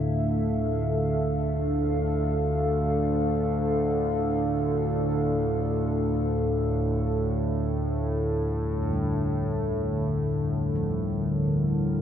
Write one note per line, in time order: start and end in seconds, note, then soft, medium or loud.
0.00 12.02 D2 medium
0.00 12.02 A2 medium
0.00 12.02 D4 medium
0.00 12.02 A4 medium
0.00 8.60 E5 medium
0.00 10.10 F5 medium
7.31 12.02 D3 medium
8.07 12.02 G3 medium
8.82 12.02 F2 medium
8.93 10.93 G3 medium
10.74 12.02 F3 medium
10.74 12.02 A#4 medium